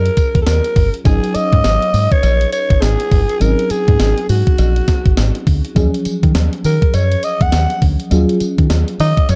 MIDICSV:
0, 0, Header, 1, 6, 480
1, 0, Start_track
1, 0, Key_signature, -6, "minor"
1, 0, Tempo, 588235
1, 860, Time_signature, 4, 2, 24, 8
1, 7634, End_track
2, 0, Start_track
2, 0, Title_t, "Alto saxophone"
2, 0, Program_c, 0, 65
2, 0, Note_on_c, 0, 70, 98
2, 309, Note_off_c, 0, 70, 0
2, 344, Note_on_c, 0, 69, 76
2, 386, Note_on_c, 0, 70, 107
2, 398, Note_off_c, 0, 69, 0
2, 768, Note_off_c, 0, 70, 0
2, 865, Note_on_c, 0, 68, 108
2, 1104, Note_on_c, 0, 75, 127
2, 1117, Note_off_c, 0, 68, 0
2, 1727, Note_on_c, 0, 73, 112
2, 1739, Note_off_c, 0, 75, 0
2, 2057, Note_off_c, 0, 73, 0
2, 2061, Note_on_c, 0, 73, 103
2, 2300, Note_on_c, 0, 68, 98
2, 2312, Note_off_c, 0, 73, 0
2, 2784, Note_on_c, 0, 70, 100
2, 2797, Note_off_c, 0, 68, 0
2, 3026, Note_on_c, 0, 68, 98
2, 3038, Note_off_c, 0, 70, 0
2, 3498, Note_off_c, 0, 68, 0
2, 3503, Note_on_c, 0, 66, 94
2, 4429, Note_off_c, 0, 66, 0
2, 5427, Note_on_c, 0, 70, 88
2, 5668, Note_on_c, 0, 73, 100
2, 5680, Note_off_c, 0, 70, 0
2, 5908, Note_on_c, 0, 75, 104
2, 5921, Note_off_c, 0, 73, 0
2, 6055, Note_on_c, 0, 78, 101
2, 6067, Note_off_c, 0, 75, 0
2, 6385, Note_off_c, 0, 78, 0
2, 7348, Note_on_c, 0, 75, 112
2, 7587, Note_on_c, 0, 73, 102
2, 7599, Note_off_c, 0, 75, 0
2, 7634, Note_off_c, 0, 73, 0
2, 7634, End_track
3, 0, Start_track
3, 0, Title_t, "FM electric piano"
3, 0, Program_c, 1, 5
3, 0, Control_c, 1, 64, 127
3, 0, Note_on_c, 1, 54, 61
3, 0, Note_on_c, 1, 61, 57
3, 0, Note_on_c, 1, 65, 61
3, 0, Note_on_c, 1, 68, 74
3, 824, Note_off_c, 1, 54, 0
3, 828, Note_off_c, 1, 61, 0
3, 832, Note_off_c, 1, 65, 0
3, 835, Note_off_c, 1, 68, 0
3, 853, Note_on_c, 1, 54, 66
3, 860, Note_on_c, 1, 61, 60
3, 866, Note_on_c, 1, 63, 64
3, 869, Control_c, 1, 64, 0
3, 872, Note_on_c, 1, 68, 75
3, 1030, Control_c, 1, 64, 127
3, 2744, Note_off_c, 1, 54, 0
3, 2747, Note_off_c, 1, 61, 0
3, 2750, Note_off_c, 1, 63, 0
3, 2754, Note_off_c, 1, 68, 0
3, 2776, Note_on_c, 1, 54, 67
3, 2782, Note_on_c, 1, 60, 50
3, 2789, Note_on_c, 1, 63, 62
3, 2795, Note_on_c, 1, 68, 69
3, 2836, Note_on_c, 1, 61, 62
3, 2845, Note_off_c, 1, 60, 0
3, 4665, Note_off_c, 1, 54, 0
3, 4672, Note_off_c, 1, 63, 0
3, 4675, Note_off_c, 1, 68, 0
3, 4690, Note_off_c, 1, 61, 0
3, 4693, Note_on_c, 1, 54, 71
3, 4700, Note_on_c, 1, 61, 73
3, 4706, Note_on_c, 1, 53, 70
3, 4711, Control_c, 1, 64, 0
3, 4713, Note_on_c, 1, 68, 82
3, 4844, Control_c, 1, 64, 127
3, 6584, Note_off_c, 1, 54, 0
3, 6587, Note_off_c, 1, 61, 0
3, 6591, Note_off_c, 1, 53, 0
3, 6594, Note_off_c, 1, 68, 0
3, 6616, Note_on_c, 1, 54, 73
3, 6621, Note_on_c, 1, 61, 69
3, 6628, Note_on_c, 1, 65, 77
3, 6635, Note_on_c, 1, 68, 84
3, 7634, Note_off_c, 1, 54, 0
3, 7634, Note_off_c, 1, 61, 0
3, 7634, Note_off_c, 1, 65, 0
3, 7634, Note_off_c, 1, 68, 0
3, 7634, End_track
4, 0, Start_track
4, 0, Title_t, "Fingered electric bass"
4, 0, Program_c, 2, 33
4, 287, Note_on_c, 2, 39, 89
4, 354, Note_off_c, 2, 39, 0
4, 382, Note_on_c, 2, 39, 96
4, 485, Note_off_c, 2, 39, 0
4, 623, Note_on_c, 2, 31, 98
4, 725, Note_off_c, 2, 31, 0
4, 861, Note_on_c, 2, 32, 102
4, 964, Note_off_c, 2, 32, 0
4, 1247, Note_on_c, 2, 44, 97
4, 1314, Note_off_c, 2, 44, 0
4, 1340, Note_on_c, 2, 32, 104
4, 1444, Note_off_c, 2, 32, 0
4, 1582, Note_on_c, 2, 44, 110
4, 1685, Note_off_c, 2, 44, 0
4, 1821, Note_on_c, 2, 34, 96
4, 1992, Note_off_c, 2, 34, 0
4, 2208, Note_on_c, 2, 32, 81
4, 2274, Note_off_c, 2, 32, 0
4, 2304, Note_on_c, 2, 32, 91
4, 2406, Note_off_c, 2, 32, 0
4, 2544, Note_on_c, 2, 31, 93
4, 2646, Note_off_c, 2, 31, 0
4, 2783, Note_on_c, 2, 32, 107
4, 2886, Note_off_c, 2, 32, 0
4, 3168, Note_on_c, 2, 44, 91
4, 3234, Note_off_c, 2, 44, 0
4, 3263, Note_on_c, 2, 32, 98
4, 3366, Note_off_c, 2, 32, 0
4, 3503, Note_on_c, 2, 44, 95
4, 3606, Note_off_c, 2, 44, 0
4, 3743, Note_on_c, 2, 34, 96
4, 3913, Note_off_c, 2, 34, 0
4, 4128, Note_on_c, 2, 32, 80
4, 4194, Note_off_c, 2, 32, 0
4, 4224, Note_on_c, 2, 32, 101
4, 4326, Note_off_c, 2, 32, 0
4, 4464, Note_on_c, 2, 38, 89
4, 4566, Note_off_c, 2, 38, 0
4, 4703, Note_on_c, 2, 39, 110
4, 4805, Note_off_c, 2, 39, 0
4, 5088, Note_on_c, 2, 51, 102
4, 5154, Note_off_c, 2, 51, 0
4, 5183, Note_on_c, 2, 39, 102
4, 5285, Note_off_c, 2, 39, 0
4, 5423, Note_on_c, 2, 51, 106
4, 5526, Note_off_c, 2, 51, 0
4, 5662, Note_on_c, 2, 42, 97
4, 5832, Note_off_c, 2, 42, 0
4, 6046, Note_on_c, 2, 39, 81
4, 6113, Note_off_c, 2, 39, 0
4, 6142, Note_on_c, 2, 39, 101
4, 6245, Note_off_c, 2, 39, 0
4, 6382, Note_on_c, 2, 38, 93
4, 6485, Note_off_c, 2, 38, 0
4, 6622, Note_on_c, 2, 39, 100
4, 6725, Note_off_c, 2, 39, 0
4, 7006, Note_on_c, 2, 51, 98
4, 7073, Note_off_c, 2, 51, 0
4, 7101, Note_on_c, 2, 39, 99
4, 7204, Note_off_c, 2, 39, 0
4, 7341, Note_on_c, 2, 51, 109
4, 7445, Note_off_c, 2, 51, 0
4, 7582, Note_on_c, 2, 42, 110
4, 7634, Note_off_c, 2, 42, 0
4, 7634, End_track
5, 0, Start_track
5, 0, Title_t, "Muted fingered electric bass strokes"
5, 1103, Note_on_c, 9, 29, 48
5, 1185, Note_off_c, 9, 29, 0
5, 3023, Note_on_c, 9, 29, 54
5, 3104, Note_off_c, 9, 29, 0
5, 4944, Note_on_c, 9, 29, 50
5, 5026, Note_off_c, 9, 29, 0
5, 6862, Note_on_c, 9, 29, 51
5, 6943, Note_off_c, 9, 29, 0
5, 7634, End_track
6, 0, Start_track
6, 0, Title_t, "Drums"
6, 45, Note_on_c, 9, 42, 57
6, 127, Note_off_c, 9, 42, 0
6, 138, Note_on_c, 9, 42, 87
6, 140, Note_on_c, 9, 36, 96
6, 140, Note_on_c, 9, 54, 63
6, 220, Note_off_c, 9, 42, 0
6, 221, Note_off_c, 9, 54, 0
6, 222, Note_off_c, 9, 36, 0
6, 285, Note_on_c, 9, 36, 93
6, 285, Note_on_c, 9, 42, 59
6, 367, Note_off_c, 9, 36, 0
6, 367, Note_off_c, 9, 42, 0
6, 379, Note_on_c, 9, 56, 74
6, 380, Note_on_c, 9, 38, 111
6, 380, Note_on_c, 9, 42, 81
6, 380, Note_on_c, 9, 54, 107
6, 461, Note_off_c, 9, 42, 0
6, 461, Note_off_c, 9, 56, 0
6, 462, Note_off_c, 9, 38, 0
6, 462, Note_off_c, 9, 54, 0
6, 526, Note_on_c, 9, 42, 57
6, 607, Note_off_c, 9, 42, 0
6, 621, Note_on_c, 9, 36, 99
6, 621, Note_on_c, 9, 46, 76
6, 702, Note_off_c, 9, 46, 0
6, 703, Note_off_c, 9, 36, 0
6, 766, Note_on_c, 9, 42, 51
6, 848, Note_off_c, 9, 42, 0
6, 858, Note_on_c, 9, 56, 55
6, 859, Note_on_c, 9, 36, 118
6, 860, Note_on_c, 9, 42, 74
6, 861, Note_on_c, 9, 54, 73
6, 939, Note_off_c, 9, 56, 0
6, 941, Note_off_c, 9, 36, 0
6, 942, Note_off_c, 9, 42, 0
6, 942, Note_off_c, 9, 54, 0
6, 1009, Note_on_c, 9, 42, 54
6, 1091, Note_off_c, 9, 42, 0
6, 1099, Note_on_c, 9, 42, 80
6, 1102, Note_on_c, 9, 54, 67
6, 1181, Note_off_c, 9, 42, 0
6, 1184, Note_off_c, 9, 54, 0
6, 1245, Note_on_c, 9, 42, 50
6, 1246, Note_on_c, 9, 36, 87
6, 1327, Note_off_c, 9, 36, 0
6, 1327, Note_off_c, 9, 42, 0
6, 1338, Note_on_c, 9, 56, 71
6, 1341, Note_on_c, 9, 42, 72
6, 1342, Note_on_c, 9, 38, 104
6, 1343, Note_on_c, 9, 54, 90
6, 1420, Note_off_c, 9, 56, 0
6, 1423, Note_off_c, 9, 38, 0
6, 1423, Note_off_c, 9, 42, 0
6, 1425, Note_off_c, 9, 54, 0
6, 1488, Note_on_c, 9, 42, 55
6, 1570, Note_off_c, 9, 42, 0
6, 1582, Note_on_c, 9, 54, 61
6, 1583, Note_on_c, 9, 46, 76
6, 1664, Note_off_c, 9, 46, 0
6, 1664, Note_off_c, 9, 54, 0
6, 1726, Note_on_c, 9, 36, 94
6, 1727, Note_on_c, 9, 42, 49
6, 1808, Note_off_c, 9, 36, 0
6, 1809, Note_off_c, 9, 42, 0
6, 1820, Note_on_c, 9, 54, 70
6, 1820, Note_on_c, 9, 56, 93
6, 1821, Note_on_c, 9, 42, 85
6, 1902, Note_off_c, 9, 54, 0
6, 1902, Note_off_c, 9, 56, 0
6, 1903, Note_off_c, 9, 42, 0
6, 1966, Note_on_c, 9, 42, 59
6, 2048, Note_off_c, 9, 42, 0
6, 2061, Note_on_c, 9, 42, 88
6, 2062, Note_on_c, 9, 54, 63
6, 2142, Note_off_c, 9, 42, 0
6, 2144, Note_off_c, 9, 54, 0
6, 2206, Note_on_c, 9, 36, 93
6, 2207, Note_on_c, 9, 42, 61
6, 2287, Note_off_c, 9, 36, 0
6, 2289, Note_off_c, 9, 42, 0
6, 2300, Note_on_c, 9, 56, 75
6, 2302, Note_on_c, 9, 42, 74
6, 2303, Note_on_c, 9, 38, 111
6, 2303, Note_on_c, 9, 54, 103
6, 2381, Note_off_c, 9, 56, 0
6, 2384, Note_off_c, 9, 38, 0
6, 2384, Note_off_c, 9, 42, 0
6, 2384, Note_off_c, 9, 54, 0
6, 2446, Note_on_c, 9, 42, 58
6, 2528, Note_off_c, 9, 42, 0
6, 2542, Note_on_c, 9, 36, 94
6, 2542, Note_on_c, 9, 46, 77
6, 2623, Note_off_c, 9, 46, 0
6, 2624, Note_off_c, 9, 36, 0
6, 2688, Note_on_c, 9, 42, 53
6, 2769, Note_off_c, 9, 42, 0
6, 2781, Note_on_c, 9, 56, 60
6, 2782, Note_on_c, 9, 42, 70
6, 2783, Note_on_c, 9, 54, 76
6, 2862, Note_off_c, 9, 56, 0
6, 2864, Note_off_c, 9, 42, 0
6, 2864, Note_off_c, 9, 54, 0
6, 2930, Note_on_c, 9, 42, 60
6, 3011, Note_off_c, 9, 42, 0
6, 3019, Note_on_c, 9, 42, 82
6, 3022, Note_on_c, 9, 54, 70
6, 3101, Note_off_c, 9, 42, 0
6, 3104, Note_off_c, 9, 54, 0
6, 3165, Note_on_c, 9, 42, 52
6, 3166, Note_on_c, 9, 36, 85
6, 3246, Note_off_c, 9, 42, 0
6, 3248, Note_off_c, 9, 36, 0
6, 3261, Note_on_c, 9, 38, 105
6, 3261, Note_on_c, 9, 42, 73
6, 3261, Note_on_c, 9, 56, 72
6, 3263, Note_on_c, 9, 54, 86
6, 3343, Note_off_c, 9, 38, 0
6, 3343, Note_off_c, 9, 42, 0
6, 3343, Note_off_c, 9, 56, 0
6, 3344, Note_off_c, 9, 54, 0
6, 3407, Note_on_c, 9, 42, 55
6, 3489, Note_off_c, 9, 42, 0
6, 3503, Note_on_c, 9, 46, 77
6, 3503, Note_on_c, 9, 54, 67
6, 3584, Note_off_c, 9, 46, 0
6, 3584, Note_off_c, 9, 54, 0
6, 3647, Note_on_c, 9, 36, 100
6, 3648, Note_on_c, 9, 42, 52
6, 3729, Note_off_c, 9, 36, 0
6, 3729, Note_off_c, 9, 42, 0
6, 3739, Note_on_c, 9, 54, 69
6, 3741, Note_on_c, 9, 42, 88
6, 3743, Note_on_c, 9, 56, 91
6, 3821, Note_off_c, 9, 54, 0
6, 3822, Note_off_c, 9, 42, 0
6, 3824, Note_off_c, 9, 56, 0
6, 3886, Note_on_c, 9, 42, 54
6, 3967, Note_off_c, 9, 42, 0
6, 3980, Note_on_c, 9, 42, 89
6, 3982, Note_on_c, 9, 36, 97
6, 3982, Note_on_c, 9, 54, 66
6, 3983, Note_on_c, 9, 38, 76
6, 4062, Note_off_c, 9, 42, 0
6, 4063, Note_off_c, 9, 36, 0
6, 4063, Note_off_c, 9, 54, 0
6, 4064, Note_off_c, 9, 38, 0
6, 4125, Note_on_c, 9, 42, 61
6, 4126, Note_on_c, 9, 36, 99
6, 4207, Note_off_c, 9, 36, 0
6, 4207, Note_off_c, 9, 42, 0
6, 4221, Note_on_c, 9, 38, 118
6, 4221, Note_on_c, 9, 42, 79
6, 4221, Note_on_c, 9, 54, 106
6, 4221, Note_on_c, 9, 56, 81
6, 4302, Note_off_c, 9, 42, 0
6, 4303, Note_off_c, 9, 38, 0
6, 4303, Note_off_c, 9, 54, 0
6, 4303, Note_off_c, 9, 56, 0
6, 4366, Note_on_c, 9, 42, 55
6, 4448, Note_off_c, 9, 42, 0
6, 4462, Note_on_c, 9, 36, 101
6, 4462, Note_on_c, 9, 46, 78
6, 4543, Note_off_c, 9, 46, 0
6, 4544, Note_off_c, 9, 36, 0
6, 4607, Note_on_c, 9, 42, 51
6, 4689, Note_off_c, 9, 42, 0
6, 4700, Note_on_c, 9, 56, 59
6, 4701, Note_on_c, 9, 36, 121
6, 4701, Note_on_c, 9, 42, 74
6, 4702, Note_on_c, 9, 54, 72
6, 4782, Note_off_c, 9, 36, 0
6, 4782, Note_off_c, 9, 56, 0
6, 4783, Note_off_c, 9, 42, 0
6, 4783, Note_off_c, 9, 54, 0
6, 4850, Note_on_c, 9, 42, 59
6, 4931, Note_off_c, 9, 42, 0
6, 4939, Note_on_c, 9, 42, 81
6, 4942, Note_on_c, 9, 54, 74
6, 5021, Note_off_c, 9, 42, 0
6, 5024, Note_off_c, 9, 54, 0
6, 5085, Note_on_c, 9, 42, 51
6, 5086, Note_on_c, 9, 36, 89
6, 5166, Note_off_c, 9, 42, 0
6, 5168, Note_off_c, 9, 36, 0
6, 5180, Note_on_c, 9, 42, 81
6, 5180, Note_on_c, 9, 56, 74
6, 5181, Note_on_c, 9, 38, 112
6, 5182, Note_on_c, 9, 54, 81
6, 5261, Note_off_c, 9, 56, 0
6, 5262, Note_off_c, 9, 38, 0
6, 5262, Note_off_c, 9, 42, 0
6, 5264, Note_off_c, 9, 54, 0
6, 5328, Note_on_c, 9, 42, 54
6, 5409, Note_off_c, 9, 42, 0
6, 5422, Note_on_c, 9, 46, 73
6, 5422, Note_on_c, 9, 54, 65
6, 5503, Note_off_c, 9, 46, 0
6, 5503, Note_off_c, 9, 54, 0
6, 5566, Note_on_c, 9, 36, 102
6, 5567, Note_on_c, 9, 42, 53
6, 5648, Note_off_c, 9, 36, 0
6, 5649, Note_off_c, 9, 42, 0
6, 5659, Note_on_c, 9, 54, 70
6, 5661, Note_on_c, 9, 42, 84
6, 5661, Note_on_c, 9, 56, 87
6, 5741, Note_off_c, 9, 54, 0
6, 5742, Note_off_c, 9, 42, 0
6, 5743, Note_off_c, 9, 56, 0
6, 5806, Note_on_c, 9, 42, 57
6, 5888, Note_off_c, 9, 42, 0
6, 5899, Note_on_c, 9, 42, 88
6, 5900, Note_on_c, 9, 54, 66
6, 5980, Note_off_c, 9, 42, 0
6, 5982, Note_off_c, 9, 54, 0
6, 6045, Note_on_c, 9, 36, 104
6, 6045, Note_on_c, 9, 42, 63
6, 6126, Note_off_c, 9, 36, 0
6, 6126, Note_off_c, 9, 42, 0
6, 6138, Note_on_c, 9, 42, 81
6, 6139, Note_on_c, 9, 38, 106
6, 6139, Note_on_c, 9, 54, 101
6, 6139, Note_on_c, 9, 56, 76
6, 6220, Note_off_c, 9, 38, 0
6, 6220, Note_off_c, 9, 42, 0
6, 6220, Note_off_c, 9, 54, 0
6, 6220, Note_off_c, 9, 56, 0
6, 6284, Note_on_c, 9, 42, 53
6, 6365, Note_off_c, 9, 42, 0
6, 6379, Note_on_c, 9, 46, 80
6, 6381, Note_on_c, 9, 36, 104
6, 6461, Note_off_c, 9, 46, 0
6, 6462, Note_off_c, 9, 36, 0
6, 6525, Note_on_c, 9, 42, 52
6, 6607, Note_off_c, 9, 42, 0
6, 6618, Note_on_c, 9, 56, 62
6, 6619, Note_on_c, 9, 42, 71
6, 6620, Note_on_c, 9, 54, 76
6, 6700, Note_off_c, 9, 56, 0
6, 6701, Note_off_c, 9, 42, 0
6, 6701, Note_off_c, 9, 54, 0
6, 6767, Note_on_c, 9, 42, 57
6, 6849, Note_off_c, 9, 42, 0
6, 6858, Note_on_c, 9, 42, 86
6, 6861, Note_on_c, 9, 54, 68
6, 6940, Note_off_c, 9, 42, 0
6, 6943, Note_off_c, 9, 54, 0
6, 7004, Note_on_c, 9, 42, 51
6, 7005, Note_on_c, 9, 36, 89
6, 7086, Note_off_c, 9, 36, 0
6, 7086, Note_off_c, 9, 42, 0
6, 7098, Note_on_c, 9, 56, 74
6, 7099, Note_on_c, 9, 42, 69
6, 7100, Note_on_c, 9, 38, 96
6, 7101, Note_on_c, 9, 54, 91
6, 7179, Note_off_c, 9, 56, 0
6, 7181, Note_off_c, 9, 38, 0
6, 7181, Note_off_c, 9, 42, 0
6, 7183, Note_off_c, 9, 54, 0
6, 7246, Note_on_c, 9, 42, 51
6, 7327, Note_off_c, 9, 42, 0
6, 7341, Note_on_c, 9, 46, 78
6, 7341, Note_on_c, 9, 54, 62
6, 7422, Note_off_c, 9, 46, 0
6, 7422, Note_off_c, 9, 54, 0
6, 7485, Note_on_c, 9, 36, 94
6, 7486, Note_on_c, 9, 42, 54
6, 7567, Note_off_c, 9, 36, 0
6, 7568, Note_off_c, 9, 42, 0
6, 7578, Note_on_c, 9, 54, 73
6, 7579, Note_on_c, 9, 42, 89
6, 7581, Note_on_c, 9, 56, 91
6, 7634, Note_off_c, 9, 42, 0
6, 7634, Note_off_c, 9, 54, 0
6, 7634, Note_off_c, 9, 56, 0
6, 7634, End_track
0, 0, End_of_file